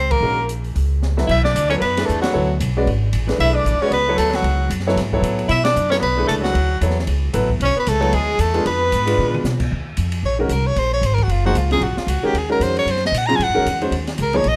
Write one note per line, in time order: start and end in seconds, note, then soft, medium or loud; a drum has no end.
0.00 0.19 C#2 medium
0.00 0.12 C4 medium
0.00 0.13 C5 medium
0.11 0.49 A#3 medium
0.11 0.49 A#4 medium
0.11 kick medium
0.11 ride medium
0.21 0.72 A#1 medium
0.21 0.36 D#3 soft
0.21 0.36 G#3 soft
0.21 0.36 C#4 soft
0.21 0.36 F#4 soft
0.21 0.36 A#4 medium
0.49 closed hi-hat soft
0.64 open hi-hat soft
0.75 1.26 C#2 medium
0.75 open hi-hat soft
1.03 snare soft
1.17 1.27 F#3 medium
1.17 1.27 B3 medium
1.17 1.27 E4 soft
1.17 1.27 A4 medium
1.17 1.27 E5 medium
1.17 snare soft
1.27 1.54 B1 medium
1.27 1.42 E4 medium
1.27 kick medium
1.27 crash medium
1.31 1.44 E5 medium
1.43 1.68 D4 medium
1.43 1.69 D5 medium
1.43 snare soft
1.55 1.80 D2 medium
1.55 hi-hat pedal medium
1.55 ride medium
1.69 1.80 F#3 medium
1.69 1.80 B3 medium
1.69 1.74 C#4 medium
1.69 1.80 E4 medium
1.69 1.80 A4 medium
1.69 1.75 C#5 medium
1.69 1.80 C#5 medium
1.69 ride soft
1.79 2.07 F#2 medium
1.79 2.07 B3 medium
1.79 2.08 B4 medium
1.79 ride medium
1.97 2.32 E3 medium
1.97 2.32 A3 medium
1.97 2.32 D4 medium
1.97 2.32 G#4 medium
1.97 2.32 B4 medium
1.97 snare soft
1.97 ride medium
2.06 2.34 E2 medium
2.06 2.21 A3 medium
2.06 2.21 A4 medium
2.06 hi-hat pedal soft
2.21 2.57 F#3 medium
2.21 2.57 F#4 medium
2.21 snare medium
2.21 ride medium
2.33 2.60 D2 medium
2.33 2.47 F#3 medium
2.33 2.47 B3 medium
2.33 2.47 E4 medium
2.33 2.48 A4 medium
2.33 2.47 C#5 medium
2.60 2.86 B1 medium
2.60 hi-hat pedal medium
2.60 ride medium
2.77 2.86 G#3 medium
2.77 2.86 C#4 medium
2.77 2.86 F#4 medium
2.77 2.86 B4 medium
2.77 2.86 D5 medium
2.86 3.12 G#1 medium
2.86 ride soft
3.13 3.38 A1 medium
3.13 hi-hat pedal soft
3.13 ride medium
3.27 3.63 E3 medium
3.27 3.63 A3 soft
3.27 3.63 D4 soft
3.27 3.63 G#4 soft
3.27 3.63 B4 medium
3.27 snare soft
3.27 ride soft
3.39 3.64 B1 medium
3.39 3.55 E4 medium
3.39 3.57 E5 loud
3.39 ride medium
3.53 3.82 D4 medium
3.53 3.83 D5 medium
3.64 3.79 A1 medium
3.64 hi-hat pedal medium
3.64 ride medium
3.80 3.91 G#3 medium
3.80 3.90 C#4 medium
3.80 3.91 C#4 medium
3.80 3.91 F#4 medium
3.80 3.91 B4 medium
3.80 3.92 C#5 medium
3.80 3.92 D5 medium
3.80 muted upright bass stroke soft
3.90 4.17 C#2 medium
3.90 4.15 B3 medium
3.90 4.17 B4 medium
3.90 ride medium
4.08 4.43 F#3 medium
4.08 4.43 B3 medium
4.08 4.43 E4 medium
4.08 4.43 A4 medium
4.08 4.43 C#5 medium
4.16 4.42 D2 medium
4.16 4.32 A3 medium
4.16 4.37 A4 medium
4.16 hi-hat pedal medium
4.16 ride medium
4.31 4.70 F#3 medium
4.31 snare soft
4.31 ride soft
4.35 4.72 F#4 medium
4.42 4.69 C#2 medium
4.42 ride medium
4.70 4.95 F#2 medium
4.70 hi-hat pedal medium
4.70 ride medium
4.80 snare soft
4.86 4.96 F#3 medium
4.86 4.96 B3 medium
4.86 4.97 E4 medium
4.86 4.97 A4 medium
4.86 4.97 C#5 medium
4.86 snare soft
4.96 5.21 G#2 medium
4.96 snare soft
4.96 ride medium
5.12 5.48 F#3 medium
5.12 5.48 B3 medium
5.12 5.48 E4 medium
5.12 5.48 A4 medium
5.12 5.48 C#5 medium
5.12 kick medium
5.22 5.48 A2 medium
5.22 hi-hat pedal soft
5.22 ride medium
5.39 ride soft
5.48 5.75 B2 medium
5.48 5.63 E4 medium
5.48 5.65 E5 loud
5.48 ride medium
5.64 5.89 D4 medium
5.64 5.90 D5 medium
5.64 snare medium
5.64 ride medium
5.76 6.01 F#2 medium
5.76 hi-hat pedal medium
5.90 6.01 F#3 medium
5.90 6.01 B3 medium
5.90 5.95 C#4 medium
5.90 6.01 E4 soft
5.90 6.01 A4 medium
5.90 6.01 C#5 medium
5.90 5.96 C#5 medium
5.90 snare soft
5.90 ride soft
6.00 6.28 B1 medium
6.00 6.26 B3 medium
6.00 6.27 B4 medium
6.00 ride medium
6.17 6.53 E3 medium
6.17 6.53 A3 medium
6.17 6.53 D4 medium
6.17 6.53 G#4 medium
6.17 6.53 B4 medium
6.27 6.54 C#2 medium
6.27 6.34 A3 medium
6.27 6.35 A4 medium
6.27 hi-hat pedal medium
6.27 ride medium
6.41 6.77 F#3 medium
6.41 6.79 F#4 medium
6.41 snare medium
6.55 6.80 D2 medium
6.55 ride medium
6.81 7.06 E2 medium
6.81 6.95 F#3 medium
6.81 6.96 B3 medium
6.81 6.95 E4 soft
6.81 6.96 A4 soft
6.81 6.96 C#5 medium
6.81 hi-hat pedal soft
6.81 ride medium
6.90 snare soft
6.99 snare soft
7.07 7.33 C#2 medium
7.07 ride medium
7.33 7.59 A1 medium
7.33 7.48 F#3 medium
7.33 7.47 B3 medium
7.33 7.48 E4 medium
7.33 7.48 A4 medium
7.33 7.48 B4 medium
7.33 hi-hat pedal medium
7.33 ride medium
7.50 kick medium
7.60 7.74 B1 medium
7.60 7.76 C#4 medium
7.60 ride medium
7.65 7.77 C#5 loud
7.76 7.89 B3 medium
7.76 7.90 B4 medium
7.76 muted upright bass stroke soft
7.87 8.12 C#2 loud
7.87 8.14 A3 medium
7.87 8.16 A4 medium
7.87 hi-hat pedal medium
7.87 ride medium
8.00 8.11 F#3 medium
8.00 8.11 B3 medium
8.00 8.11 E4 medium
8.00 8.11 A4 medium
8.00 8.11 C#5 medium
8.00 ride soft
8.13 8.38 D2 medium
8.13 8.42 G#3 medium
8.13 8.42 G#4 medium
8.13 ride medium
8.39 8.64 E2 medium
8.39 8.64 A3 medium
8.39 8.66 A4 medium
8.39 hi-hat pedal medium
8.39 ride medium
8.54 8.64 G#3 medium
8.54 8.64 B3 medium
8.54 8.64 D4 medium
8.54 8.65 F4 medium
8.54 8.64 G#4 medium
8.54 ride soft
8.65 8.91 F2 medium
8.65 9.40 B3 medium
8.65 9.41 B4 medium
8.65 ride medium
8.92 9.18 G#2 medium
8.92 hi-hat pedal medium
8.92 ride medium
9.06 9.42 G#3 medium
9.06 9.42 B3 medium
9.06 9.42 D4 medium
9.06 9.42 F4 medium
9.06 9.42 B4 medium
9.06 ride medium
9.18 9.43 A#2 medium
9.18 high tom soft
9.34 high tom medium
9.44 9.70 B2 medium
9.44 snare medium
9.44 hi-hat pedal medium
9.60 kick medium
9.60 crash medium
9.71 9.97 D#2 medium
9.97 10.23 F2 medium
9.97 hi-hat pedal soft
9.97 ride medium
10.12 ride medium
10.23 10.48 A#1 medium
10.23 10.39 C#5 medium
10.39 10.49 D#3 medium
10.39 10.49 G#3 medium
10.39 10.49 C#4 medium
10.39 10.53 F4 soft
10.39 10.50 F#4 medium
10.39 10.49 A#4 medium
10.49 10.75 C2 medium
10.49 10.68 A#4 medium
10.49 hi-hat pedal medium
10.49 ride medium
10.67 10.80 C#5 loud
10.76 11.01 A#1 medium
10.76 10.93 C5 medium
10.76 ride medium
10.94 11.07 C#5 medium
11.01 11.27 G#1 medium
11.01 hi-hat pedal soft
11.01 ride medium
11.06 11.16 C5 medium
11.14 11.25 A#4 medium
11.18 kick medium
11.18 ride soft
11.23 11.33 F#4 medium
11.28 11.54 F#1 medium
11.28 11.46 F4 medium
11.28 ride medium
11.45 11.55 F3 medium
11.45 11.55 A#3 medium
11.45 11.55 D#4 medium
11.45 11.59 F#4 medium
11.45 11.55 G#4 medium
11.45 11.55 C5 medium
11.55 11.81 C#2 medium
11.55 11.71 F4 medium
11.55 hi-hat pedal soft
11.55 ride medium
11.71 11.81 C#3 medium
11.71 11.81 F#3 medium
11.71 11.81 C4 medium
11.71 11.81 F4 medium
11.71 11.81 G#4 medium
11.71 11.85 G#4 loud
11.71 ride soft
11.81 11.96 A#1 medium
11.81 12.00 F#4 medium
11.81 ride medium
11.97 12.11 F4 medium
11.97 muted upright bass stroke soft
11.97 snare soft
12.07 12.22 C#2 medium
12.07 12.27 F#4 medium
12.07 hi-hat pedal medium
12.07 ride medium
12.23 12.33 D#3 medium
12.23 12.33 G#3 medium
12.23 12.33 C#4 medium
12.23 12.33 F#4 medium
12.23 12.39 G4 medium
12.23 12.33 A#4 medium
12.23 muted upright bass stroke soft
12.33 12.59 D#2 medium
12.33 ride medium
12.37 12.51 G#4 medium
12.49 12.85 D#3 medium
12.49 12.85 G#3 medium
12.49 12.85 C#4 medium
12.49 12.85 F#4 medium
12.49 12.85 A#4 medium
12.49 12.64 A#4 medium
12.60 12.85 F2 medium
12.60 12.77 C5 medium
12.60 hi-hat pedal soft
12.60 ride medium
12.77 12.92 C#5 medium
12.77 ride soft
12.85 13.11 F#2 medium
12.85 ride medium
12.91 13.04 C5 medium
12.97 snare soft
13.05 13.19 D#5 medium
13.05 snare soft
13.12 13.38 A#2 medium
13.12 hi-hat pedal medium
13.12 ride medium
13.18 13.28 F#5 medium
13.27 13.39 C#3 medium
13.27 13.38 F#3 medium
13.27 13.39 C4 medium
13.27 13.39 F4 medium
13.27 13.39 G#4 medium
13.27 13.37 A#5 medium
13.27 ride soft
13.36 13.50 G#2 medium
13.36 13.45 G#5 medium
13.40 13.83 F#5 medium
13.40 ride medium
13.49 13.56 F#2 medium
13.54 13.65 D#2 medium
13.54 13.64 D#3 medium
13.54 13.65 G#3 medium
13.54 13.65 C#4 medium
13.54 13.65 F#4 medium
13.54 13.65 A#4 medium
13.65 13.90 E2 medium
13.65 hi-hat pedal soft
13.65 ride medium
13.81 13.91 D#3 medium
13.81 13.91 G#3 medium
13.81 13.92 C#4 medium
13.81 13.91 F#4 medium
13.81 13.92 C5 medium
13.81 ride soft
13.91 14.17 D#2 medium
13.91 ride medium
14.07 snare soft
14.07 ride soft
14.18 14.44 C#2 medium
14.18 hi-hat pedal medium
14.18 ride medium
14.22 14.38 A#4 medium
14.33 14.44 F3 medium
14.33 14.44 A#3 medium
14.33 14.44 D#4 medium
14.33 14.44 G#4 medium
14.33 14.44 C#5 medium
14.33 14.50 C#5 medium
14.33 ride soft
14.44 14.56 A#1 medium
14.44 ride medium
14.48 14.56 D#5 loud